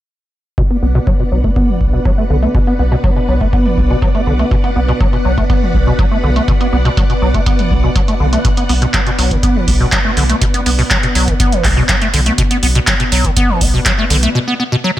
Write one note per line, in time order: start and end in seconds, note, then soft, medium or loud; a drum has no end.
0.58 0.62 B2 loud
0.58 14.31 B3 medium
0.58 14.31 B4 medium
0.58 14.31 D5 medium
0.58 14.31 F#5 medium
0.58 kick loud
0.58 closed hi-hat medium
0.70 0.77 B3 medium
0.70 closed hi-hat soft
0.82 1.00 B1 medium
0.82 0.87 B3 medium
0.95 0.99 B2 loud
0.95 closed hi-hat soft
1.07 1.14 F#3 medium
1.07 kick loud
1.07 closed hi-hat medium
1.20 1.24 B2 medium
1.20 closed hi-hat soft
1.32 1.49 B1 medium
1.32 1.39 F#3 medium
1.44 1.51 A3 medium
1.44 kick medium
1.44 closed hi-hat soft
1.56 1.70 B3 medium
1.56 kick loud
1.56 closed hi-hat medium
1.69 1.82 E3 medium
1.81 1.98 B1 medium
1.81 1.85 B3 medium
1.81 kick medium
1.93 2.00 B2 medium
2.05 2.12 F#3 medium
2.05 kick loud
2.05 closed hi-hat medium
2.18 2.25 A3 medium
2.30 2.47 B1 medium
2.30 2.37 D3 medium
2.42 2.49 A3 medium
2.42 closed hi-hat soft
2.55 2.59 B2 loud
2.55 kick loud
2.55 closed hi-hat medium
2.67 2.74 B3 medium
2.67 closed hi-hat soft
2.79 2.97 B1 loud
2.79 2.83 B3 medium
2.92 2.96 B2 medium
2.92 closed hi-hat soft
3.04 3.11 F#3 medium
3.04 kick loud
3.04 closed hi-hat medium
3.16 3.20 B2 medium
3.16 closed hi-hat soft
3.28 3.46 B1 medium
3.28 3.35 F#3 medium
3.41 3.48 A3 medium
3.41 kick medium
3.41 closed hi-hat soft
3.53 3.67 B3 medium
3.53 kick loud
3.53 closed hi-hat medium
3.66 3.79 E3 medium
3.66 closed hi-hat soft
3.78 3.95 B1 medium
3.78 3.82 B3 medium
3.78 kick medium
3.90 3.97 B2 medium
4.02 4.09 F#3 loud
4.02 kick loud
4.02 closed hi-hat medium
4.15 4.21 A3 medium
4.15 closed hi-hat soft
4.27 4.44 B1 medium
4.27 4.34 D3 medium
4.39 4.46 A3 medium
4.39 closed hi-hat soft
4.51 4.56 B2 loud
4.51 kick loud
4.51 closed hi-hat medium
4.64 4.71 B3 medium
4.64 closed hi-hat soft
4.76 4.93 B1 loud
4.76 4.80 B3 medium
4.88 4.92 B2 loud
4.88 closed hi-hat soft
5.00 5.07 F#3 medium
5.00 kick loud
5.00 closed hi-hat medium
5.13 5.17 B2 medium
5.13 closed hi-hat soft
5.25 5.42 B1 medium
5.25 5.32 F#3 medium
5.38 5.44 A3 medium
5.38 kick medium
5.38 closed hi-hat soft
5.50 5.64 B3 medium
5.50 kick loud
5.50 closed hi-hat medium
5.62 5.76 E3 medium
5.74 5.92 B1 medium
5.74 5.78 B3 medium
5.74 kick medium
5.87 5.93 B2 medium
5.99 6.06 F#3 medium
5.99 kick loud
5.99 closed hi-hat medium
6.11 6.18 A3 medium
6.23 6.41 B1 medium
6.23 6.30 D3 medium
6.36 6.43 A3 medium
6.36 closed hi-hat soft
6.48 6.52 B2 medium
6.48 kick loud
6.48 closed hi-hat medium
6.61 6.67 B3 medium
6.61 closed hi-hat soft
6.73 6.90 B1 loud
6.73 6.77 B3 medium
6.85 6.89 B2 loud
6.85 closed hi-hat soft
6.97 7.04 F#3 medium
6.97 kick loud
6.97 closed hi-hat medium
7.10 7.14 B2 medium
7.10 closed hi-hat soft
7.22 7.39 B1 medium
7.22 7.29 F#3 medium
7.34 7.41 A3 medium
7.34 kick medium
7.34 closed hi-hat soft
7.46 7.60 B3 medium
7.46 kick loud
7.46 closed hi-hat medium
7.59 7.72 E3 medium
7.59 closed hi-hat soft
7.71 7.88 B1 medium
7.71 7.75 B3 medium
7.71 kick medium
7.84 7.90 B2 medium
7.96 8.03 F#3 medium
7.96 kick loud
7.96 closed hi-hat medium
8.08 8.15 A3 medium
8.08 closed hi-hat soft
8.20 8.38 B1 medium
8.20 8.27 D3 medium
8.33 8.39 A3 medium
8.33 closed hi-hat soft
8.45 8.49 B2 loud
8.45 kick loud
8.45 closed hi-hat medium
8.57 8.64 B3 medium
8.57 closed hi-hat soft
8.69 8.87 B1 medium
8.69 8.74 B3 medium
8.69 open hi-hat loud
8.82 8.86 B2 loud
8.82 closed hi-hat soft
8.94 9.01 F#3 loud
8.94 kick loud
8.94 clap loud
8.94 closed hi-hat medium
9.07 9.11 B2 medium
9.07 closed hi-hat soft
9.19 9.36 B1 medium
9.19 9.33 F#3 medium
9.19 open hi-hat medium
9.31 9.38 D3 medium
9.31 kick medium
9.31 closed hi-hat soft
9.43 9.57 B3 medium
9.43 kick loud
9.43 closed hi-hat medium
9.56 9.69 E3 medium
9.68 9.85 B1 medium
9.68 9.72 B3 medium
9.68 kick medium
9.68 open hi-hat loud
9.80 9.87 B2 medium
9.92 9.99 F#3 loud
9.92 kick loud
9.92 clap loud
9.92 closed hi-hat medium
10.05 10.12 A3 medium
10.17 10.34 B1 medium
10.17 10.24 D3 medium
10.17 open hi-hat loud
10.29 10.36 A3 medium
10.29 closed hi-hat soft
10.42 10.46 B2 loud
10.42 kick loud
10.42 closed hi-hat medium
10.54 10.61 B3 medium
10.54 closed hi-hat soft
10.66 10.83 B1 loud
10.66 10.70 B3 medium
10.66 open hi-hat medium
10.79 10.83 B2 medium
10.79 open hi-hat medium
10.90 10.98 F#3 medium
10.90 kick loud
10.90 clap loud
10.90 closed hi-hat medium
11.03 11.07 B2 medium
11.03 closed hi-hat soft
11.15 11.33 B1 medium
11.15 11.29 F#3 medium
11.15 open hi-hat medium
11.28 11.35 D3 medium
11.28 kick medium
11.28 closed hi-hat soft
11.40 11.54 B3 medium
11.40 kick loud
11.40 closed hi-hat medium
11.52 11.66 E3 medium
11.52 closed hi-hat soft
11.64 11.82 B1 medium
11.64 11.69 B3 medium
11.64 kick medium
11.64 clap medium
11.64 open hi-hat medium
11.77 11.84 B2 medium
11.89 11.96 F#3 loud
11.89 kick loud
11.89 clap loud
11.89 closed hi-hat medium
12.02 12.08 A3 medium
12.02 closed hi-hat soft
12.14 12.31 B1 medium
12.14 12.21 D3 medium
12.14 open hi-hat loud
12.26 12.33 A3 medium
12.26 closed hi-hat soft
12.38 12.42 B2 loud
12.38 kick loud
12.38 closed hi-hat medium
12.51 12.57 B3 medium
12.51 closed hi-hat soft
12.63 12.80 B1 medium
12.63 12.67 B3 medium
12.63 open hi-hat loud
12.75 12.79 B2 loud
12.75 closed hi-hat soft
12.87 12.94 F#3 loud
12.87 kick loud
12.87 clap loud
12.87 closed hi-hat medium
13.00 13.04 B2 medium
13.00 closed hi-hat soft
13.12 13.29 B1 medium
13.12 13.26 F#3 medium
13.12 open hi-hat medium
13.25 13.31 D3 medium
13.25 kick medium
13.25 closed hi-hat soft
13.37 13.51 B3 medium
13.37 kick loud
13.37 closed hi-hat medium
13.49 13.63 E3 medium
13.61 13.79 B1 medium
13.61 13.65 B3 medium
13.61 kick medium
13.61 open hi-hat loud
13.74 13.80 B2 medium
13.86 13.93 F#3 loud
13.86 kick loud
13.86 clap loud
13.86 closed hi-hat medium
13.98 14.05 A3 medium
14.10 14.28 B1 medium
14.10 14.17 D3 medium
14.10 open hi-hat medium
14.23 14.30 A3 medium
14.23 closed hi-hat soft
14.35 14.39 B2 loud
14.48 14.54 B3 medium
14.60 14.64 B3 medium
14.72 14.76 B2 loud
14.84 14.91 F#3 loud